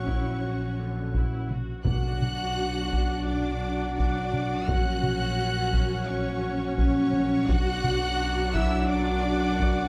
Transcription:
0.00 1.62 A#1 medium
0.00 1.51 F#2 medium
0.00 1.51 F#3 medium
0.00 1.50 C#4 medium
0.00 1.50 F#4 medium
0.00 1.50 C#5 medium
0.00 1.50 F#5 medium
0.00 1.51 C#6 medium
0.06 0.43 E4 medium
0.06 taiko medium
0.42 0.78 F#4 medium
0.78 1.14 D3 medium
1.14 1.50 E4 soft
1.14 taiko medium
1.50 1.85 F#4 medium
1.50 taiko mid soft
1.84 4.63 B1 medium
1.84 7.45 F#2 medium
1.84 2.88 B2 medium
1.84 7.45 F#3 medium
1.84 4.63 D4 medium
1.84 4.64 D4 medium
1.84 3.24 F#4 medium
1.84 7.44 F#4 medium
1.84 3.23 F#5 medium
1.84 7.44 F#5 medium
1.84 3.23 F#6 loud
1.84 taiko medium
2.22 taiko mid soft
2.92 taiko medium
3.26 3.97 D4 medium
3.26 3.94 D5 medium
3.26 3.96 D6 medium
3.95 4.67 D4 medium
3.95 4.65 D5 medium
3.95 4.66 D6 medium
3.95 taiko medium
4.33 taiko mid soft
4.66 7.45 A#1 medium
4.66 7.44 C#4 medium
4.66 6.08 F#4 medium
4.66 6.07 F#5 medium
4.66 6.07 F#6 loud
4.66 taiko medium
5.03 taiko mid medium
5.73 taiko medium
6.07 6.76 C#4 medium
6.07 6.77 C#5 medium
6.07 6.76 C#6 medium
6.77 7.47 C#4 medium
6.77 7.47 C#5 medium
6.77 7.47 C#6 loud
6.77 taiko medium
7.13 taiko mid medium
7.48 9.88 B1 medium
7.48 9.88 F#2 medium
7.48 9.88 F#3 medium
7.48 9.88 D4 medium
7.48 8.54 F#4 loud
7.48 9.88 F#4 medium
7.48 9.88 F#5 medium
7.48 8.54 F#5 loud
7.48 8.54 F#6 loud
7.48 taiko loud
7.84 taiko mid soft
8.53 8.90 E4 loud
8.53 8.88 E5 medium
8.53 8.89 E6 loud
8.53 taiko medium
8.89 9.88 D4 medium
8.89 9.88 D5 loud
8.89 9.88 D6 loud
9.60 taiko medium

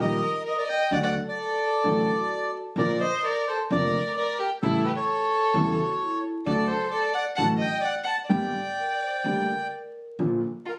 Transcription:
0.00 0.18 A#1 medium
0.00 0.19 A#1 medium
0.00 0.18 A#2 medium
0.00 0.18 D#3 medium
0.00 0.19 G3 medium
0.00 0.19 A#3 medium
0.00 0.18 G4 medium
0.00 0.42 A#4 medium
0.00 0.43 D#5 medium
0.45 0.56 A#4 medium
0.45 0.57 D#5 medium
0.57 0.67 A#4 medium
0.57 0.69 D5 medium
0.67 0.89 D#5 medium
0.67 0.90 G5 medium
0.91 1.11 D2 medium
0.91 1.12 D2 medium
0.91 1.11 D3 medium
0.91 1.11 F#3 medium
0.91 1.12 A3 medium
0.91 1.11 F#4 medium
0.91 0.97 D5 medium
0.91 0.99 F#5 medium
1.03 1.14 D5 medium
1.03 1.15 F#5 medium
1.28 2.51 A4 medium
1.28 2.51 D5 medium
1.83 2.03 A1 medium
1.83 2.04 A1 medium
1.83 2.04 A2 medium
1.83 2.04 D3 medium
1.83 2.04 F#3 medium
1.83 2.04 A3 medium
1.83 2.04 F#4 medium
1.83 1.94 A4 medium
1.95 2.19 A4 medium
2.18 2.62 F#4 medium
2.76 2.96 A#1 medium
2.76 2.97 A#1 medium
2.76 2.97 A#2 medium
2.76 2.97 D3 medium
2.76 2.97 F3 medium
2.76 2.97 A#3 medium
2.76 2.98 F4 medium
2.76 2.99 A#4 medium
2.76 3.02 D5 medium
3.01 3.23 C5 medium
3.01 3.25 D#5 medium
3.23 3.46 A#4 medium
3.23 3.48 D5 medium
3.47 3.59 A4 medium
3.47 3.58 C5 medium
3.70 3.90 F1 medium
3.70 3.91 F1 medium
3.70 3.91 F2 medium
3.70 3.90 D3 medium
3.70 3.90 F3 medium
3.70 3.91 A#3 medium
3.70 3.91 F4 medium
3.70 4.14 A#4 medium
3.70 4.16 D5 loud
4.17 4.38 A#4 medium
4.17 4.39 D5 medium
4.39 4.50 G4 medium
4.39 4.50 A#4 medium
4.62 4.82 A1 medium
4.62 4.82 A2 medium
4.62 4.82 C#3 medium
4.62 4.82 G3 medium
4.62 4.82 A3 medium
4.62 4.82 E4 medium
4.62 4.84 E4 medium
4.62 4.86 A4 medium
4.85 4.91 G4 medium
4.85 4.90 B4 medium
4.96 6.20 A4 medium
4.96 6.19 C#5 medium
5.54 5.73 E1 medium
5.54 5.74 E1 medium
5.54 5.74 E2 medium
5.54 5.74 C#3 medium
5.54 5.74 G3 medium
5.54 5.74 A3 medium
5.54 5.74 E4 medium
5.54 5.75 A4 loud
5.78 6.01 F#4 medium
6.02 6.33 E4 medium
6.45 6.66 D2 loud
6.45 6.66 D2 medium
6.45 6.66 D3 medium
6.45 6.66 F#3 medium
6.45 6.66 A3 medium
6.45 6.66 F#4 medium
6.45 6.66 A4 medium
6.45 6.68 D5 medium
6.66 6.89 A4 medium
6.66 6.90 C5 medium
6.90 7.12 A4 medium
6.90 7.16 D5 medium
7.13 7.24 D5 medium
7.13 7.25 F#5 medium
7.36 7.58 A1 medium
7.36 7.58 A2 medium
7.36 7.58 D3 medium
7.36 7.58 F#3 medium
7.36 7.58 A3 medium
7.36 7.58 F#4 medium
7.36 7.47 F#5 medium
7.36 7.48 A5 loud
7.58 7.80 D#5 medium
7.58 7.86 G5 loud
7.81 7.92 D5 medium
7.81 7.95 F#5 medium
8.04 8.15 F#5 medium
8.04 8.17 A5 medium
8.27 8.50 G1 medium
8.27 8.51 G1 medium
8.27 8.50 G2 medium
8.27 8.50 D3 medium
8.27 8.50 G3 medium
8.27 8.50 A#3 medium
8.27 8.50 G4 medium
8.27 9.66 D5 medium
8.27 9.68 G5 loud
8.79 9.00 A#4 medium
9.03 9.26 C5 medium
9.24 9.44 D2 medium
9.24 9.45 D2 medium
9.24 9.45 D3 medium
9.24 9.45 G3 medium
9.24 9.45 A#3 medium
9.24 9.45 G4 medium
10.19 10.39 A#1 medium
10.19 10.39 A#2 medium
10.19 10.39 D3 medium
10.19 10.40 F3 medium
10.19 10.40 A#3 medium
10.19 10.40 F4 medium
10.66 10.71 F4 medium
10.66 10.74 A#4 medium

